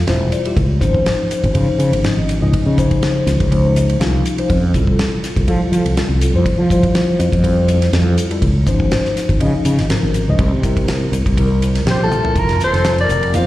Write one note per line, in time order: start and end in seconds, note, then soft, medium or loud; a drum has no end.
0.07 0.30 E1 medium
0.07 0.41 G3 medium
0.07 0.42 E4 medium
0.07 0.42 F4 medium
0.07 0.42 C5 medium
0.07 0.30 E5 medium
0.07 snare loud
0.07 ride medium
0.32 0.55 D5 medium
0.32 hi-hat pedal medium
0.32 ride medium
0.45 0.57 G3 medium
0.45 0.57 E4 medium
0.45 0.57 F4 medium
0.45 0.57 G4 medium
0.45 ride medium
0.56 0.79 C#2 medium
0.56 kick loud
0.56 ride medium
0.80 1.04 G#1 medium
0.80 1.48 F3 medium
0.80 1.48 C#4 medium
0.80 1.48 D#4 medium
0.80 1.48 C5 medium
0.80 kick medium
0.80 hi-hat pedal medium
0.80 ride medium
0.94 kick medium
1.06 snare loud
1.06 ride medium
1.31 hi-hat pedal medium
1.31 ride medium
1.44 1.54 G#1 medium
1.44 kick medium
1.44 ride medium
1.53 1.67 C#3 medium
1.53 1.99 F3 medium
1.53 1.99 C#4 medium
1.53 1.99 D#4 medium
1.53 1.99 C5 medium
1.53 kick medium
1.53 ride medium
1.79 1.91 C#3 medium
1.79 hi-hat pedal medium
1.79 ride medium
1.92 2.02 G#1 medium
1.92 ride medium
2.03 2.38 F3 medium
2.03 2.38 C#4 medium
2.03 2.38 D#4 medium
2.03 2.38 D#5 medium
2.03 snare medium
2.03 ride medium
2.17 2.39 G#1 medium
2.29 hi-hat pedal medium
2.29 ride medium
2.41 2.52 C#2 medium
2.41 2.75 F3 medium
2.41 2.74 C#4 medium
2.41 2.75 D#4 medium
2.41 2.75 D#5 medium
2.54 kick loud
2.54 ride medium
2.66 3.23 C#3 medium
2.77 3.45 F3 medium
2.77 3.45 C#4 medium
2.77 3.45 D#4 medium
2.77 3.45 C5 medium
2.77 kick medium
2.77 hi-hat pedal medium
2.77 ride medium
2.91 kick medium
2.91 ride medium
3.03 snare loud
3.03 ride medium
3.27 3.39 C#2 medium
3.27 snare soft
3.27 hi-hat pedal medium
3.27 ride medium
3.40 3.97 C#2 medium
3.40 kick medium
3.40 ride medium
3.51 3.96 F3 medium
3.51 3.96 C#4 medium
3.51 3.97 D#4 medium
3.51 3.97 C5 medium
3.51 kick medium
3.51 ride medium
3.76 hi-hat pedal medium
3.76 ride medium
3.90 ride medium
4.00 4.23 C2 medium
4.00 4.34 F3 medium
4.00 4.34 C#4 medium
4.00 4.34 D#4 medium
4.00 4.34 F4 medium
4.00 4.46 F5 medium
4.00 snare loud
4.00 ride medium
4.26 hi-hat pedal medium
4.26 ride medium
4.38 4.49 F3 medium
4.38 4.50 C#4 medium
4.38 4.50 D#4 medium
4.38 4.50 C5 medium
4.38 ride medium
4.50 4.72 F2 medium
4.50 kick loud
4.50 ride medium
4.74 4.96 C2 medium
4.74 5.42 G3 medium
4.74 5.42 E4 medium
4.74 5.42 F4 medium
4.74 5.42 A4 medium
4.74 kick medium
4.74 hi-hat pedal medium
4.74 ride medium
4.87 kick medium
4.99 snare loud
4.99 ride medium
5.24 snare soft
5.24 hi-hat pedal medium
5.24 ride medium
5.36 5.47 C2 medium
5.36 kick medium
5.36 ride medium
5.48 5.60 F3 medium
5.48 5.92 G3 medium
5.48 5.93 E4 medium
5.48 5.93 F4 medium
5.48 5.93 A4 medium
5.48 kick medium
5.48 ride medium
5.72 5.84 F3 medium
5.72 hi-hat pedal medium
5.72 ride medium
5.85 5.95 C2 medium
5.85 ride medium
5.97 6.31 G3 medium
5.97 6.31 E4 medium
5.97 6.31 F4 medium
5.97 6.31 A4 medium
5.97 snare loud
5.97 ride medium
6.09 6.31 C2 medium
6.21 hi-hat pedal medium
6.21 ride medium
6.34 6.44 F2 medium
6.34 6.67 G3 medium
6.34 6.67 E4 medium
6.34 6.67 F4 medium
6.34 6.68 C5 medium
6.46 kick loud
6.46 ride medium
6.58 7.15 F3 medium
6.70 7.37 G3 medium
6.70 7.38 E4 medium
6.70 7.38 F4 medium
6.70 7.38 C5 medium
6.70 kick medium
6.70 hi-hat pedal medium
6.70 ride medium
6.83 kick medium
6.83 ride medium
6.95 snare loud
6.95 ride medium
7.19 7.31 F2 medium
7.19 hi-hat pedal medium
7.19 ride medium
7.32 7.89 F2 medium
7.32 kick medium
7.32 ride medium
7.43 7.88 G3 medium
7.43 7.89 E4 medium
7.43 7.89 F4 medium
7.43 7.89 C5 medium
7.43 kick medium
7.43 ride medium
7.68 hi-hat pedal medium
7.68 ride medium
7.82 snare soft
7.82 ride medium
7.93 8.15 F2 medium
7.93 8.27 G3 medium
7.93 8.27 E4 medium
7.93 8.27 F4 medium
7.93 8.27 A4 medium
7.93 snare loud
7.93 ride medium
8.18 hi-hat pedal medium
8.18 ride medium
8.30 8.42 G3 medium
8.30 8.42 E4 medium
8.30 8.42 F4 medium
8.30 8.42 A4 medium
8.30 ride medium
8.42 8.64 C#2 medium
8.42 kick loud
8.42 ride medium
8.67 8.89 G#1 medium
8.67 9.34 F3 medium
8.67 9.34 C#4 medium
8.67 9.34 D#4 medium
8.67 9.35 C5 medium
8.67 kick medium
8.67 hi-hat pedal medium
8.67 ride medium
8.80 kick medium
8.92 snare loud
8.92 ride medium
9.05 snare soft
9.17 snare soft
9.17 hi-hat pedal medium
9.17 ride soft
9.29 9.39 G#1 medium
9.29 kick medium
9.29 ride medium
9.40 9.52 C#3 medium
9.40 9.85 F3 medium
9.40 9.85 C#4 medium
9.40 9.86 D#4 medium
9.40 9.86 D#5 medium
9.40 kick medium
9.40 ride medium
9.65 9.77 C#3 medium
9.65 hi-hat pedal medium
9.65 ride medium
9.78 9.89 G#1 medium
9.78 snare soft
9.78 ride medium
9.89 10.23 F3 medium
9.89 10.23 C#4 medium
9.89 10.24 D#4 medium
9.89 10.24 A#4 medium
9.89 snare loud
9.89 ride medium
10.03 10.25 G#1 medium
10.14 hi-hat pedal medium
10.14 ride medium
10.28 10.38 C#2 medium
10.28 10.39 F3 medium
10.28 10.39 C#4 medium
10.28 10.40 D#4 medium
10.28 10.40 D#5 medium
10.39 10.51 C2 loud
10.39 kick loud
10.39 ride medium
10.52 11.08 C3 medium
10.63 11.31 G3 medium
10.63 11.31 C4 medium
10.63 11.31 E4 medium
10.63 11.31 A#4 medium
10.63 kick medium
10.63 hi-hat pedal medium
10.63 ride medium
10.77 kick medium
10.77 ride medium
10.88 snare loud
10.88 ride medium
11.12 11.24 C2 medium
11.12 hi-hat pedal medium
11.12 ride medium
11.26 11.82 C2 medium
11.26 kick medium
11.26 ride medium
11.37 11.82 G3 medium
11.37 11.82 C4 medium
11.37 11.83 E4 medium
11.37 11.83 A#4 medium
11.37 kick medium
11.37 ride medium
11.62 hi-hat pedal medium
11.62 ride medium
11.75 snare soft
11.75 ride medium
11.86 12.08 A#1 medium
11.86 12.20 G3 medium
11.86 12.20 C4 medium
11.86 12.20 E4 medium
11.86 12.21 G4 medium
11.86 12.09 G5 medium
11.86 snare loud
11.86 ride medium
11.90 12.01 G4 medium
11.90 12.01 C5 medium
12.03 12.40 F4 medium
12.03 12.40 A4 medium
12.10 12.33 E5 medium
12.10 hi-hat pedal medium
12.10 high tom medium
12.24 12.35 G3 medium
12.24 12.35 C4 medium
12.24 12.35 E4 medium
12.24 12.35 A#4 medium
12.24 floor tom medium
12.36 12.58 F1 medium
12.36 12.62 F4 medium
12.36 12.61 A#4 medium
12.36 kick medium
12.36 hi-hat pedal medium
12.36 ride medium
12.49 snare soft
12.49 ride soft
12.59 13.26 D#3 medium
12.59 13.27 A#3 medium
12.59 13.27 C4 medium
12.59 13.27 F4 medium
12.59 snare soft
12.59 hi-hat pedal medium
12.64 12.97 A4 medium
12.64 12.97 C5 medium
12.73 13.06 F1 medium
12.73 snare soft
12.73 ride medium
12.84 snare loud
12.84 hi-hat pedal medium
12.84 ride medium
12.98 13.39 A#4 medium
12.98 13.36 D5 medium
12.98 ride soft
13.09 13.35 F1 medium
13.09 hi-hat pedal medium
13.23 ride soft
13.32 13.47 F2 medium
13.32 13.47 D#3 medium
13.32 13.47 A#3 medium
13.32 13.47 C4 medium
13.32 13.47 F4 medium
13.32 13.47 F5 medium
13.32 hi-hat pedal medium
13.32 ride medium
13.37 13.47 C5 medium